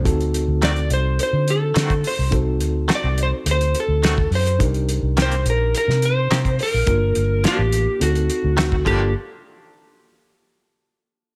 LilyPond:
<<
  \new Staff \with { instrumentName = "Electric slide guitar" } { \time 4/4 \key d \phrygian \tempo 4 = 106 r4 d''8 c''8 c''8 a'4 c''8 | r4 d''8 c''8 c''8 a'4 c''8 | r4 c''8 bes'8 bes'8 c''4 bes'8~ | bes'4 g'4 fis'4. g'8 |
r1 | }
  \new Staff \with { instrumentName = "Reed electric piano" } { \time 4/4 \key d \phrygian <c' ees' fis' a'>1 | <c' ees' fis' a'>1 | <d' ees' g' bes'>1 | <bes d' f' bes'>2 <c' ees' fis' a'>4. <bes d' f' a'>8 |
r1 | }
  \new Staff \with { instrumentName = "Clean electric guitar" } { \time 4/4 \key d \phrygian r4 <ees a c' fis'>8 r4. <ees a c' fis'>8 r8 | r4 <ees a c' fis'>8 r4. <ees a c' fis'>8 r8 | r4 <ees bes c' g'>8 r4. <ees bes c' g'>8 r8 | r4 <f bes d' f'>8 r4. <ees a c' fis'>8 <f bes d' g'>8 |
r1 | }
  \new Staff \with { instrumentName = "Fingered electric bass" } { \clef bass \time 4/4 \key d \phrygian d,8. d,8. c,8 r16 d8. d8 r16 c,16~ | c,8 d,8 r16 c,8 r16 d,8 r16 d,8. fis,8 | c,8. c,8. bes,,8 r16 c8. c8 r16 bes,,16 | g,,8 g,,8 r16 a,,8 r16 d,8 r16 d,8. g,,8 |
r1 | }
  \new DrumStaff \with { instrumentName = "Drums" } \drummode { \time 4/4 <hh bd>16 hh16 hh8 <hh sn>16 hh16 hh8 hh8 hh8 <hh sn>16 <hh bd>16 hho8 | <hh bd>8 hh8 <hh sn>8 hh8 hh16 hh16 hh8 <hh sn>16 bd16 hho16 hh16 | <hh bd>16 hh16 hh8 <hh sn>16 hh16 hh8 hh16 sn16 hh8 <hh sn>16 <hh bd>16 hho8 | <hh bd>8 hh8 <hh sn>8 hh8 hh16 hh16 hh8 <hh sn>16 bd16 <cymc bd>8 |
r4 r4 r4 r4 | }
>>